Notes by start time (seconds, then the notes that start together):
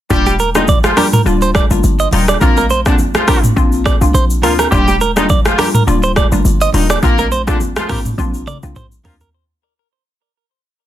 0.10 D#1 G3 A#3 D4 F4 G4, kick, shaker
0.26 G4, high conga, shaker
0.39 A#4, high conga, shaker
0.55 D#3 G3 A#3 D4 D#4 F4, cross-stick, high conga, shaker
0.68 D5, kick, low conga, shaker
0.84 F3 F4, cross-stick, high conga, shaker
0.97 G3 A#3 D4 F4 G4 A#4, cross-stick, open hi-hat, low conga, shaker
1.13 A#4, mid tom, high conga, shaker
1.26 D1 G3 A#3 D4 F4, shaker
1.42 C5, shaker
1.55 D5, kick, cross-stick, high conga, shaker
1.70 G1 G3 A#3 D4 F4, high conga, shaker
1.84 G1, low conga, shaker
1.99 D#5, shaker
2.11 D#1 D#3 G3 A#3 D4 D#4 F4, open hi-hat, low conga, shaker
2.28 D5, cross-stick, shaker
2.41 A#1 A#3 C4 D4 F4 A#4, kick, shaker
2.57 A#4, high conga, shaker
2.70 C5, high conga, shaker
2.86 D3 A#3 C4 D4 F4, kick, cross-stick, high conga, shaker
2.98 low conga, shaker
3.14 F3 F4, cross-stick, high conga, shaker
3.28 G3 A#3 C4 D4 F4 G4 A#4, kick, cross-stick, open hi-hat, low conga, shaker
3.44 mid tom, high conga, shaker
3.56 A#1 A#3 C4 D4 F4, kick, shaker
3.72 shaker
3.86 D5, kick, cross-stick, high conga, shaker
4.01 C2 A#3 C4 D4 F4, high conga, shaker
4.14 A#1 C5, low conga, shaker
4.30 shaker
4.42 D2 F3 A#3 C4 D4 F4 A#4, open hi-hat, low conga, shaker
4.59 A#4, cross-stick, shaker
4.72 D#1 G3 A#3 D4 F4 G4, kick, shaker
4.88 G4, high conga, shaker
5.01 A#4, high conga, shaker
5.16 D#3 G3 A#3 D4 D#4 F4, cross-stick, high conga, shaker
5.29 D5, kick, low conga, shaker
5.45 F3 F4, cross-stick, high conga, shaker
5.58 G3 A#3 D4 F4 G4 A#4, cross-stick, open hi-hat, low conga, shaker
5.74 A#4, mid tom, high conga, shaker
5.87 D1 G3 A#3 D4 F4, shaker
6.03 C5, shaker
6.16 D5, kick, cross-stick, high conga, shaker
6.32 G1 G3 A#3 D4 F4, high conga, shaker
6.45 G1, low conga, shaker
6.61 D#5, shaker
6.73 D#1 D#3 G3 A#3 D4 D#4 F4, open hi-hat, low conga, shaker
6.90 D5, cross-stick, shaker
7.03 A#1 A#3 C4 D4 F4 A#4, kick, shaker
7.18 A#4, high conga, shaker
7.32 C5, high conga, shaker
7.47 D3 A#3 C4 D4 F4, kick, cross-stick, high conga, shaker
7.60 low conga, shaker
7.76 F3 F4, cross-stick, high conga, shaker
7.89 G3 A#3 C4 D4 F4 G4 A#4, kick, cross-stick, mid tom, open hi-hat, low conga, shaker
8.05 mid tom, high conga, shaker
8.18 A#1 A#3 C4 D4 F4, kick, high tom, shaker
8.34 shaker
8.47 D5, mid tom, high conga, shaker
8.63 C2 A#3 C4 D4 F4, mid tom, high conga, shaker
8.76 A#1 C5, mid tom, low conga, shaker
8.92 shaker
9.03 D2 F3 A#3 C4 D4 F4 A#4, floor tom, open hi-hat, low conga, shaker
9.21 A#4, floor tom, shaker